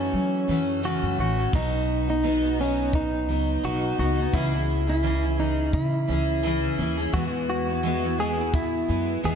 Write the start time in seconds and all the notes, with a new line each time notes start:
Already playing: E3 A3 C#4 F#4
0.13 F#3
0.48 F#2 E3 A3 C#4 F#4
0.83 F#2 C#3 E3 A3 C#4 F#4
1.03 F#2
1.18 A1 E3 A3 C#4 F#4
1.38 E3 A3 C#4 F#4
1.53 B1 B2 F#3 B3 D#4 F#4, kick
2.08 B3 D#4 F#4
2.23 B2 F#3 B3 D#4 F#4
2.42 B3 D#4 F#4
2.59 F#3 B3 C#4 D#4 F#4
2.93 D#4, kick
3.29 C#2 F#3 B3 D#4 F#4
3.63 B1 B2 F#3 B3 D#4 F#4
3.99 C#2 F#3 B3 D#4 F#4
4.17 B3 D#4 F#4
4.33 C#2 C#3 E3 C#4 E4 G#4, kick
4.52 C#4 E4 G#4
4.87 C#4 E4 G#4
5.03 C#3 E3 C#4 E4 G#4
5.22 C#4 E4 G#4
5.38 E3 C#4 D#4 G#4
5.73 C#3 E4, kick
6.08 C#2 E3 C#4 E4 G#4
6.43 C#3 E3 C#4 E4 G#4
6.78 D#2 E3 C#4 E4 G#4
6.97 C#4 E4 G#4
7.13 E2 E3 G#3 B3 E4 F#4, kick
7.50 F#4
7.67 B3 E4 F#4
7.83 E3 G#3 B3 E4 F#4
8.02 B3 E4 F#4
8.18 G#3 B3 E4 F#4 G#4
8.37 B3 E4 F#4
8.54 E4, kick
8.88 F#2 G#3 B3 E4 F#4
9.23 E2 E3 G#3 B3 E4 F#4 G#4